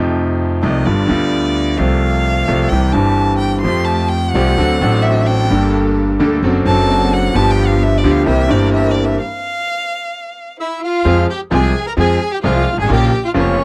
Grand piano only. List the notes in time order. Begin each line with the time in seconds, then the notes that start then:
Already playing: F2 C3 F3 A3 D#4
0.63 C2 C3 F3 A3 D#4
0.86 G1 G2 D3 G3 B3 F4
1.07 D2 D3 G3 B3
1.11 F4
1.77 C2 C3 F3 A3 C4
1.81 A4
2.48 C2 C3 F3 A3 C4 A4
2.72 C2 C3 E3 G3 C4 G4
2.93 G1 G2 E3 G3 C4 G4
3.63 F2 F3 A3 C4 G4
4.34 C2 C3 F3 A3 C4 G4
4.58 D2 D3 F#3 C4 D4 A4
4.80 A1 A2 F#3 C4 D4 A4
5.49 G1 G2 G3 A#3 D4
5.53 A4
6.20 D2 D3 G3 A#3 D4 A4
6.44 F#2 F#3 C4 D4 A4
6.65 F#2 F#3 C4 D4 A4
7.33 G1 G2 F3 B3 D4
7.37 G4
8.04 D2 D3 F3 B3 D4 G4
8.26 C2 C3 E3 A#3 C4 G4
8.47 G1 G2 E3 A#3 C4
8.51 G4
11.05 F2 F3 G#3 C4 G#4
11.51 C2 C3 F3 G#3 C4 G#4
11.97 F2 F3 G#3 C4 G#4
12.44 C2 C3 F3 G#3 C4 G#4
12.73 G1
12.78 G#1
12.84 A1
12.89 A#1 A#2 C#3 F3 A#3 F4
13.34 F1 F2 C#3 F3 A#3 F4